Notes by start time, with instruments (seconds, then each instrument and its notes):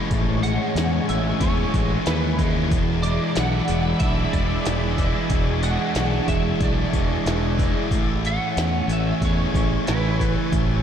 Already playing: distorted electric guitar E3 G#3 C#4 E4, overdriven electric guitar E3 G#3 C#4, string machine G#3 C#5 E5
0.09 fingered electric bass A1, distorted electric guitar A2, overdriven electric guitar A2, string machine G#5, kick, open hi-hat
0.42 distorted electric guitar G#3, overdriven electric guitar G#3, lead electric guitar F#5, open hi-hat
0.75 fingered electric bass E2, distorted electric guitar E3, overdriven electric guitar C#4, snare, open hi-hat
1.08 fingered electric bass A1, overdriven electric guitar E3, distorted electric guitar G#3, lead electric guitar E5, open hi-hat
1.40 fingered electric bass E2, overdriven electric guitar C#4, distorted electric guitar E4, lead electric guitar C#5, kick, open hi-hat
1.74 fingered electric bass A1, overdriven electric guitar G#3, distorted electric guitar G#3, kick, open hi-hat
2.06 fingered electric bass D#2, overdriven electric guitar E3, distorted electric guitar C#4, lead electric guitar B4, snare, open hi-hat
2.39 overdriven electric guitar G#3, distorted electric guitar E4, kick, open hi-hat
2.71 fingered electric bass E1, distorted electric guitar E2, overdriven electric guitar E2, string machine G#4 D5 B5, kick, open hi-hat
3.02 distorted electric guitar G#3, overdriven electric guitar G#3, lead electric guitar D5, open hi-hat
3.36 fingered electric bass B1, distorted electric guitar E3, overdriven electric guitar D4, lead electric guitar F#5, snare, open hi-hat
3.68 fingered electric bass E1, overdriven electric guitar E3, distorted electric guitar G#3, open hi-hat
3.99 fingered electric bass B1, overdriven electric guitar D4, distorted electric guitar E4, lead electric guitar E5, kick, open hi-hat
4.33 fingered electric bass E1, distorted electric guitar G#3, overdriven electric guitar G#3, lead electric guitar D5, kick, open hi-hat
4.65 fingered electric bass E1, overdriven electric guitar E3, distorted electric guitar D4, snare, open hi-hat
4.98 overdriven electric guitar G#3, distorted electric guitar E4, kick, open hi-hat
5.30 fingered electric bass E1, overdriven electric guitar E2, distorted electric guitar E2, string machine C#6, kick, open hi-hat
5.63 overdriven electric guitar G#3, distorted electric guitar G#3, lead electric guitar F#5, open hi-hat
5.95 fingered electric bass B1, distorted electric guitar E3, overdriven electric guitar D4, snare, open hi-hat
6.28 fingered electric bass E1, overdriven electric guitar E3, distorted electric guitar G#3, lead electric guitar E5, kick, open hi-hat
6.61 fingered electric bass B1, overdriven electric guitar D4, distorted electric guitar E4, lead electric guitar D5, kick, open hi-hat
6.93 fingered electric bass E1, overdriven electric guitar G#3, distorted electric guitar G#3, kick, open hi-hat
7.26 fingered electric bass E1, overdriven electric guitar E3, distorted electric guitar D4, snare, open hi-hat
7.59 overdriven electric guitar G#3, distorted electric guitar E4, kick, open hi-hat
7.91 fingered electric bass A1, distorted electric guitar A2, overdriven electric guitar A2, string machine C#5 G#5, kick, open hi-hat
8.25 distorted electric guitar A3, lead electric guitar F#5, open hi-hat
8.56 fingered electric bass E2, distorted electric guitar E3, overdriven electric guitar C#4, snare, open hi-hat
8.88 fingered electric bass A1, overdriven electric guitar E3, distorted electric guitar A3, open hi-hat
8.93 lead electric guitar E5
9.21 fingered electric bass E2, overdriven electric guitar C#4, distorted electric guitar G#4, lead electric guitar C#5, kick, open hi-hat
9.54 fingered electric bass A1, distorted electric guitar A3, kick, open hi-hat
9.87 fingered electric bass A1, overdriven electric guitar E3, distorted electric guitar C#4, lead electric guitar B4, snare, open hi-hat
10.20 distorted electric guitar G#4, kick, open hi-hat
10.52 fingered electric bass A1, overdriven electric guitar A2, distorted electric guitar A2, string machine B5, kick, open hi-hat